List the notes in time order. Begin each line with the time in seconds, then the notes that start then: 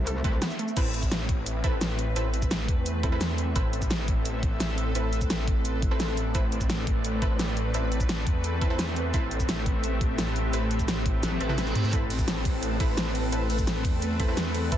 Already playing: C2 A3 C4 E5
0.07 A4, closed hi-hat, shaker
0.24 C2 A3 C4 E4 A4 B4, kick, closed hi-hat
0.42 B3, snare, closed hi-hat, shaker
0.51 shaker
0.59 A3, closed hi-hat, shaker
0.68 shaker
0.77 A1 A3 C4 E4 A4 B4, kick, closed hi-hat, crash, shaker
0.94 A4, closed hi-hat, shaker
1.03 kick, shaker
1.12 snare, closed hi-hat, shaker
1.29 kick, closed hi-hat
1.41 B4
1.46 closed hi-hat, shaker
1.64 A1 C4 E4 A4 B4, kick, closed hi-hat
1.81 snare, closed hi-hat, shaker
1.99 closed hi-hat
2.10 E5
2.16 A1 C4 E4 A4 B4, closed hi-hat, shaker
2.34 closed hi-hat, shaker
2.42 kick, shaker
2.51 snare, closed hi-hat, shaker
2.69 E2, kick, closed hi-hat
2.86 closed hi-hat, shaker
3.03 C4 E4 A4 B4, kick, closed hi-hat
3.12 C4 E4 A4 B4
3.21 snare, closed hi-hat, shaker
3.38 closed hi-hat
3.56 A1 C4 E4 A4 B4, kick, closed hi-hat, shaker
3.73 closed hi-hat, shaker
3.82 kick, shaker
3.91 snare, closed hi-hat, shaker
4.08 kick, closed hi-hat
4.25 closed hi-hat, shaker
4.43 A1, kick, closed hi-hat
4.60 snare, closed hi-hat, shaker
4.78 closed hi-hat
4.90 D5
4.95 A1 C4 E4 A4 B4, closed hi-hat, shaker
5.13 closed hi-hat, shaker
5.21 kick, shaker
5.30 snare, closed hi-hat, shaker
5.48 A1, kick, closed hi-hat
5.65 closed hi-hat, shaker
5.82 kick, closed hi-hat
5.91 C4 E4 A4 B4
6.00 snare, closed hi-hat, shaker
6.17 closed hi-hat, shaker
6.35 A1 C4 E4 A4 B4, kick, closed hi-hat, shaker
6.52 closed hi-hat, shaker
6.61 kick, shaker
6.70 snare, closed hi-hat, shaker
6.87 kick, closed hi-hat
7.05 closed hi-hat, shaker
7.22 A1 C4 E4 A4 B4, kick, closed hi-hat
7.39 snare, closed hi-hat, shaker
7.57 closed hi-hat
7.69 E5
7.74 A1 C4 E4 A4 B4, closed hi-hat, shaker
7.92 closed hi-hat, shaker
8.00 kick, shaker
8.09 snare, closed hi-hat, shaker
8.27 E2, kick, closed hi-hat
8.44 closed hi-hat, shaker
8.62 C4 E4 A4 B4, kick, closed hi-hat
8.70 C4 E4 A4 B4
8.79 snare, closed hi-hat, shaker
8.96 closed hi-hat
9.14 A1 C4 E4 G4 A4 B4, kick, closed hi-hat, shaker
9.31 closed hi-hat, shaker
9.40 kick, shaker
9.49 snare, closed hi-hat, shaker
9.66 kick, closed hi-hat
9.84 closed hi-hat, shaker
10.01 A1, kick, closed hi-hat
10.19 snare, closed hi-hat, shaker
10.36 closed hi-hat
10.48 A5
10.53 A1 C4 E4 A4 B4, closed hi-hat, shaker
10.71 closed hi-hat, shaker
10.80 kick, shaker
10.88 snare, closed hi-hat, shaker
11.06 A1, kick, closed hi-hat
11.23 A1, snare, closed hi-hat, reverse cymbal, shaker
11.32 high tom
11.41 A1 C4 E4 A4 B4, closed hi-hat
11.49 C4 E4 A4 B4, mid tom
11.58 snare, closed hi-hat, shaker
11.67 shaker
11.75 closed hi-hat, mid tom, shaker
11.84 mid tom, shaker
11.93 A1 C4 E4 A4 B4, kick, closed hi-hat, shaker
12.10 closed hi-hat, ride, shaker
12.19 kick, shaker
12.28 snare, closed hi-hat, shaker
12.45 kick, closed hi-hat, ride
12.63 closed hi-hat, shaker
12.80 A1 C4 E4 A4 B4, kick, closed hi-hat, ride
12.98 snare, closed hi-hat, shaker
13.15 closed hi-hat, ride
13.27 E5
13.32 A1 C4 E4 A4 B4, closed hi-hat, shaker
13.50 closed hi-hat, ride, shaker
13.59 kick, shaker
13.67 snare, closed hi-hat, shaker
13.85 E2, kick, closed hi-hat, ride
14.02 closed hi-hat, shaker
14.20 C4 E4 A4 B4, kick, closed hi-hat, ride
14.28 C4 E4 A4 B4
14.37 snare, closed hi-hat, shaker
14.55 closed hi-hat, ride
14.72 A1 C4 E4 A4 B4 D5, kick, closed hi-hat, shaker